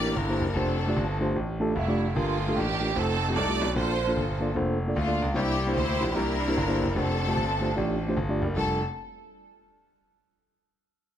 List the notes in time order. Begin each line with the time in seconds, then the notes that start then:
Already playing: G4 A#4 D5
0.01 A#3 D4 E4 G4 A#4
0.16 G1 D4 E4 A#4
0.28 A#3 D4 E4 G4 C5
0.41 F#1
0.55 F1 A3 C4 D4 F4 G4 A4 C5
0.87 A3 D4 F4 G4 D5
0.96 G1
1.20 A3 D4 F4 G4 C5
1.36 A1
1.60 A3 D4 F4 G4 A4 A5
1.75 F1 G3 A3 E4 F5
1.88 A3 D4 F4 G4 D5
2.15 G1 G2 A3 A#3 D4 F4 G4 A#4
2.48 A3 D4 F4 G4 A4
2.56 A1 A#3 D4 G4
2.81 A3 D4 F4 G4 A#4
2.95 F1 A3 C4 D#4 F4 A4 C5
3.28 A3 C4 D#4 F4 G4
3.36 C2 A4 D5
3.48 A3 C4 D#4 F4 G4
3.61 B1
3.75 A#1 A#2 A#3 D4 F4 A4 C5
4.08 A#3 D4 F4 A4 C5
4.16 G1
4.40 A#3 D4 F4 A4 D5
4.55 F1 A#3 D4 F4 A4 C5
4.87 A#3 D4 F4 A4 D5
4.96 D2 A3 D4 F4
5.06 A#3 D4 F4 A4 D5
5.22 C#2
5.34 C2 C3 A#3 D4 E4 G4 C5
5.67 A#3 D4 E4 G4 C5
5.75 D2 E4 G4 C5
6.00 A#1 A#3 D4 E4 G4 C5
6.14 C2 A#3 D4 E4 G4 A#4 D5
6.47 A#3 D4 E4 G4 C5
6.57 G1
6.68 A#3 D4 E4 G4 C5
6.83 F#1
6.94 F1 A3 C4 D4 F4 G4 A4 C5
7.27 A3 D4 F4 G4 C5
7.36 G1
7.61 A3 D4 F4 G4 C5
7.75 A1 A3 D4 F4 G4 D5
8.08 A3 D4 F4 G4 C5
8.17 G1
8.29 A3 D4 F4 G4 D5
8.42 F#1
8.56 F1 F2 G3 D4 F4 A4